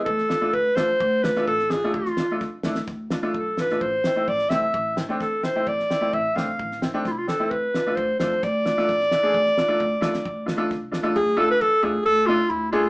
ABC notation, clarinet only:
X:1
M:4/4
L:1/16
Q:1/4=130
K:none
V:1 name="Clarinet"
A4 B2 c4 B2 A2 ^G2 | F4 z8 A2 B2 | c4 d2 e4 z2 A2 c2 | d4 e2 f4 z2 F/2 E/2 F A2 |
B4 c2 c2 d8- | d12 z4 | ^G2 A B A2 G2 A2 F2 E2 F2 |]